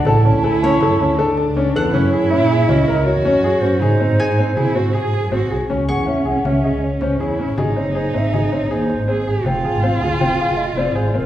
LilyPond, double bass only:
\new Staff \with { instrumentName = "Double bass" } { \clef bass \time 5/4 \key gis \minor \tempo 4 = 160 a,,8. d,16 r16 d,8 r16 fis,8 d,8. d,8 cis,8 r16 e,16 r16 | fis,8 r16 fis,16 r16 ais,8. cis,16 r16 cis,8 r16 e,8 fis,8 r16 fis,16 r16 | gis,8 r16 gis,16 r16 gis,8 r16 bis,8 gis,8. gis,8 fis,16 gis,,8 bis,,8 | \key gis \phrygian cis,8 r16 e,8 r16 bis,,16 r16 cis,8 r16 cis,8 r16 cis,16 r16 e,8 r16 a,,16 |
gis,,8. fis,,8 r16 gis,,8 gis,,8 r16 gis,,16 dis,8. gis,,8 r16 gis,,16 r16 | f,,8 r16 aes,,8 r16 d,16 r16 f,,8 r16 f,,8 r16 f,,16 r16 aes,,8 r16 f,,16 | }